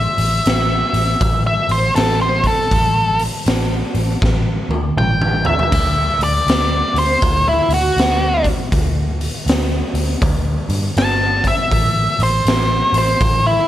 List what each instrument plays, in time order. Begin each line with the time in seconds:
Already playing: lead electric guitar E5
0.18 picked electric bass A1, open hi-hat
0.45 picked electric bass A1, snare, open hi-hat
0.93 picked electric bass A1, open hi-hat
1.21 picked electric bass A1, kick, open hi-hat
1.47 lead electric guitar E5
1.69 picked electric bass A1, lead electric guitar C5, open hi-hat
1.96 picked electric bass A1, lead electric guitar A4, snare, open hi-hat
2.21 lead electric guitar C5
2.44 lead electric guitar A4, kick, open hi-hat
2.71 picked electric bass A1, kick, open hi-hat
3.19 open hi-hat
3.46 picked electric bass A1, snare, open hi-hat
3.95 picked electric bass A1, open hi-hat
4.22 picked electric bass A1, kick, snare
4.69 picked electric bass D2, high tom
4.97 picked electric bass A1, lead electric guitar G5, mid tom
5.22 mid tom
5.45 lead electric guitar E5, floor tom
5.59 floor tom
5.72 picked electric bass D2, kick, open hi-hat, splash
6.19 picked electric bass D2, open hi-hat
6.24 lead electric guitar D5
6.47 picked electric bass D2, snare, open hi-hat
6.94 picked electric bass D2, open hi-hat
6.99 lead electric guitar C5
7.22 picked electric bass D2, kick, open hi-hat
7.49 lead electric guitar E4
7.69 picked electric bass D2, open hi-hat
7.74 lead electric guitar F#4
7.97 picked electric bass D2, snare, open hi-hat
8.44 kick, open hi-hat
8.72 picked electric bass D2, kick, open hi-hat
9.21 open hi-hat
9.46 picked electric bass D2, snare, open hi-hat
9.94 picked electric bass D2, open hi-hat
10.22 picked electric bass D2, kick, open hi-hat
10.69 picked electric bass G2, open hi-hat
10.97 picked electric bass G1, lead electric guitar A5, snare, open hi-hat
11.44 lead electric guitar E5, kick, open hi-hat
11.71 picked electric bass A1, kick, open hi-hat
12.19 picked electric bass A1, open hi-hat
12.23 lead electric guitar C5
12.45 picked electric bass A1, snare, open hi-hat
12.93 picked electric bass A1, open hi-hat
12.98 lead electric guitar C5
13.21 picked electric bass A1, kick, open hi-hat
13.47 lead electric guitar E4